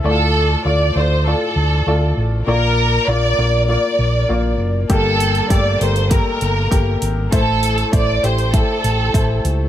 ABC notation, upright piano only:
X:1
M:4/4
L:1/8
Q:1/4=99
K:Dm
V:1 name="Upright piano"
[A,EFd]2 [A,Fd] [A,Fd] [A,Fd]2 [A,Fd]2 | [B,Fd]2 [B,Fd] [B,Fd] [B,Fd]2 [B,Fd]2 | [B,GA]2 [A,GA] [A,GB] [B,GB]2 [B,GB]2 | [A,Ec]2 [A,Ec] [A,EG] [A,Ec]2 [A,Ec]2 |]
V:2 name="Upright piano" clef=bass
A,,3 z4 z | z8 | [G,,D,]3 z4 z | [A,,E,]3 z4 z |]